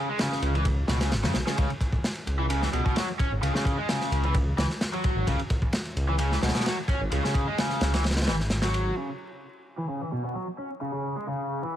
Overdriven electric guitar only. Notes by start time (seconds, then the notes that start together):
0.09 G#3
0.19 C#3
0.55 E3
0.89 B2
1.01 C#3
1.24 C#3
1.47 C#3
1.58 C#3
2.39 E3
2.50 C#3
2.62 E3
2.73 B2
2.86 B2
2.97 F#3
3.20 C#4
3.43 C#3
3.55 C#3
3.78 G#3
3.89 C#3
4.25 E3
4.58 E3
4.94 F#3
5.28 C#3
6.09 E3
6.20 C#3
6.32 E3
6.43 B2
6.55 B2
6.66 F#3
6.89 C#4
7.12 C#3
7.24 C#3
7.47 G#3
7.58 C#3
7.94 E3
8.28 E3
8.63 F#3
8.97 C#3
9.78 E3
9.89 C#3
10.02 E3
10.12 B2
10.24 B2
10.35 F#3
10.58 C#4
10.81 C#3
10.94 C#3
11.17 G#3
11.28 C#3
11.63 E3